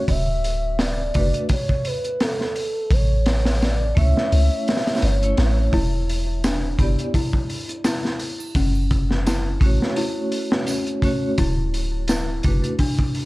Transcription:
Already playing: C#5
0.08 D1 E5, kick, open hi-hat
0.44 open hi-hat
0.79 D5, snare, open hi-hat
1.14 F#1 A3 D4 F#4 B4, kick, open hi-hat
1.34 closed hi-hat
1.49 C#5, kick, open hi-hat
1.69 kick
1.85 B4, open hi-hat
2.04 closed hi-hat
2.20 A4, snare, open hi-hat
2.41 snare
2.56 open hi-hat
2.91 A1 C#5, kick, open hi-hat
3.26 snare, open hi-hat
3.45 snare, open hi-hat
3.62 D5, snare, open hi-hat
3.95 C#2 A3 C#4 E5, kick, open hi-hat
3.99 E4 C#5
4.17 snare
4.32 C#2, open hi-hat
4.68 snare, open hi-hat
4.77 snare, open hi-hat
4.87 snare, open hi-hat
4.95 snare, open hi-hat
5.02 G1 C#5, open hi-hat
5.22 A3 C#4 E4 C#5, closed hi-hat
5.37 A1, snare, open hi-hat
5.73 E1 E4, kick, open hi-hat
6.09 open hi-hat
6.44 D4, snare, open hi-hat, tambourine
6.79 G1 B3 E4 G4 D5, kick, open hi-hat
6.99 closed hi-hat
7.14 E4, kick, open hi-hat
7.33 kick
7.50 open hi-hat
7.69 closed hi-hat
7.84 E4, snare, open hi-hat, tambourine
8.05 snare
8.20 open hi-hat
8.40 triangle
8.55 F#1 C#4, kick, open hi-hat
8.75 triangle
8.91 kick, open hi-hat
9.11 snare
9.27 E4, snare, open hi-hat, tambourine
9.60 A1 A3 C#4 F#4, kick, open hi-hat
9.66 C#5
9.82 snare
9.96 E4, open hi-hat
10.32 open hi-hat
10.52 snare
10.67 C#4, open hi-hat, tambourine
10.87 closed hi-hat
11.02 A3 C#4 F#4 C#5, kick, open hi-hat
11.38 D1 E4, kick, open hi-hat
11.74 open hi-hat
12.08 E4, snare, open hi-hat, tambourine
12.43 F#1 A3 D4 F#4 B4, kick, open hi-hat
12.64 closed hi-hat
12.79 D4, kick, open hi-hat
12.99 kick
13.15 open hi-hat

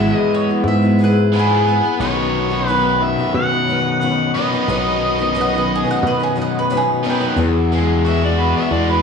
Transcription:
Already playing: G#1 G#2 E3 F#3 G#3 B3 E4 G#4 B4 E5 F#5 E6
0.00 E4 G#4
0.14 D#5
0.34 C#5
0.49 F#3 B3 E4 G#4
0.64 G#2 E5
0.82 F#3 B3 E4 G#4
0.99 F#3 B3 E4 G#4
1.04 B4
1.32 G#2 E3 F#3 G#3 B3 E4 G#4 B4
1.39 G#4
1.68 F#3 B3 E4 G#4
1.83 F#3 B3 E4 G#4
2.00 B1 B2 D#3 F#3 B3 C#4 D#4 B4 C#5 B5 D#6
2.50 F#3 C#4 D#4 B4
2.68 B2 D#3 F#3 C#4 D#4 B4
3.03 E5
3.18 F#3 C#4 D#4 B4
3.34 B2 F#5
3.51 F#3 C#4 D#4 B4
3.67 F#3 C#4 D#4 B4
4.00 B2 D#3 F#3 C#4 D#4 B4 F#5
4.34 D#3 F#3 B3 C#4 D#4 B4 D#5
4.38 B2
4.52 F#3 C#4 D#4 B4
4.68 B1 B2 D#3 F#3 B3 C#4 D#4 B4
5.19 F#3 C#4 D#4 B4
5.35 B2 D#3 F#3 C#4 D#4 B4
5.41 F#5
5.53 F#3 C#4 D#4 B4
5.58 B4
5.76 G#4
5.84 F#3 C#4 D#4 B4
5.91 F#5
6.03 B2 B4
6.19 F#3 C#4 D#4 B4
6.23 G#4
6.36 F#3 C#4 D#4 B4
6.42 F#5
6.59 B4
6.70 B2 D#3 F#3 C#4 D#4 B4
6.77 G#4
7.04 B2 D#3 F#3 B3 C#4 D#4 B4
7.10 B4 G5
7.20 F#3 C#4 D#4 B4
7.36 E2 E3 F#3 B3 F#4 G#4 F#5 E6
7.72 F#3 G#3 B3 F#4 G#4
8.05 E3 F#3 B3 F#4 G#4
8.09 E5
8.22 B3 F#4 G#4 D5
8.39 B3 B4
8.56 B3 F#4 G#4 E5
8.71 E2 G#3 D5
8.89 B3 F#4 G#4 B4

